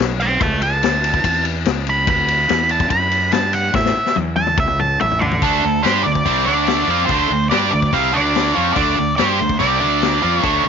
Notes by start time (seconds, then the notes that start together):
0.00 B1, snare
0.20 G5 C6, ride
0.41 C#2 E5 A5, kick, ride
0.62 A5, ride
0.83 D2, snare, ride
1.04 ride
1.14 kick
1.24 E2, kick, ride
1.45 ride
1.65 C#2, snare, ride
1.87 B5, ride
2.07 D2 B5, kick, ride
2.28 ride
2.49 E2, snare, ride
2.69 A5, ride
2.80 kick
2.90 F#2 B5, kick, ride
3.11 ride
3.32 G2 A5, snare, ride
3.53 F#5, ride
3.74 A2 E5, kick, snare
3.85 snare
3.97 muted fingered electric bass stroke
4.06 snare
4.16 E2, high tom
4.36 A5, high tom
4.47 mid tom
4.58 C#2 E5, kick
4.67 mid tom
4.79 A5, mid tom
5.00 A1 E5, mid tom
5.11 floor tom
5.20 A4 D5, floor tom
5.31 floor tom
5.42 D2 D3 A3 D4, kick, open hi-hat
5.64 D2 D3 A3
5.83 G2 G3 D4 G4 C5, snare, open hi-hat
6.03 D2 D3 A3 D5
6.15 kick
6.26 C2 C3 G3 C4, kick, open hi-hat
6.46 D2 D3 A3 D4 D5
6.67 snare, open hi-hat
6.88 F2 F3 C4 F4
7.06 D2 C5, kick, open hi-hat
7.11 D3 A3 D4
7.30 D2 D3 A3
7.50 G2 G3 D4 G4 D5, snare, open hi-hat
7.71 D2 D3 A3 D5
7.82 kick
7.93 C2 C3 G3 C4 F5, kick, open hi-hat
8.13 D2 D3 A3 D4 D5
8.35 snare, open hi-hat
8.55 F2 F3 C4 F4 C#5
8.73 D2 D3 A3 D4 D5, kick, open hi-hat
8.96 D2 D3 A3
9.16 G2 G3 D4 G4 C5, snare, open hi-hat
9.40 D2 D3 A3
9.49 kick
9.59 C2 C3 G3 C4 D5, kick, open hi-hat
9.80 D2 D3 A3 D4
10.02 snare, open hi-hat
10.22 F2 F3 C4 F4
10.39 D3 C#5
10.44 D2 A3 D4, kick, open hi-hat
10.65 D3